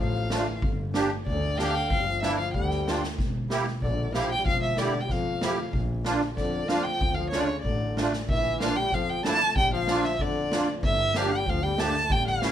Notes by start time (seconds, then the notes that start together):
Already playing: F3
0.00 A1 F5
0.30 A3 D4 F4, snare
0.46 E3
0.62 G1, kick
0.94 A#3 D4 G4, snare
1.26 D2 D3 D5, kick
1.34 C#3
1.42 D3
1.55 A#3 D4 F5 G5, snare
1.59 G4
1.74 G5
1.90 G1 F3 F5, kick
2.00 G3
2.07 F3
2.21 E3 A#3 D4 E4 E5, snare
2.38 F3 F5
2.54 D2 G3 G5, kick
2.70 snare
2.86 A#3 D4 F4, snare
3.04 snare
3.18 E1, kick, snare
3.49 A#3 E4 G4, snare
3.67 snare
3.82 A#1 D3 D5, kick
3.90 C#3
3.95 D3
4.12 F3 A#3 E4 G4 F5, snare
4.32 G5
4.38 G3
4.45 E1 F3 F5, kick
4.63 E5
4.77 D3 A#3 E4 G4 D5, snare
5.01 G3 G5
5.09 F2 F3 F5, kick, snare
5.41 A#3 E4 G4, snare
5.73 A#1, kick
6.05 A#3 D4 F4, snare
6.21 snare
6.36 F2 D3 D5, kick, snare
6.68 F3 A#3 D4 F4 F5, snare
6.83 G5
7.00 D2, kick
7.14 F3 F5
7.30 C#3 A3 D4 F4 C#5, snare
7.40 C#5 D5
7.62 A1 D3 D5, kick
7.96 A3 D4 F4, snare
8.13 snare
8.28 A#1 E3 E5, kick
8.59 A#3 D4 F4 F5, snare
8.76 G3 G5
8.92 F2 F3 F5, kick
9.09 G5
9.24 A3 A#3 D4 E4 A5, snare
9.55 A#1 G3 G5, kick
9.73 F3 F5
9.87 A#3 D4 F4, snare
10.04 E5, snare
10.19 F2 D3 D5, kick
10.51 A#3 D4 F4, snare
10.76 F3
10.83 G1 E3 E5, kick
11.14 F3 A#3 D4 G4 F5, snare
11.31 G3 G5
11.46 D2 F3 F5, kick
11.63 G3 G5
11.78 A3 A#3 D4 G4 A5, snare
12.03 A3
12.10 A1 G3 G5, kick
12.27 F5, snare
12.41 A3 C#4 E4, snare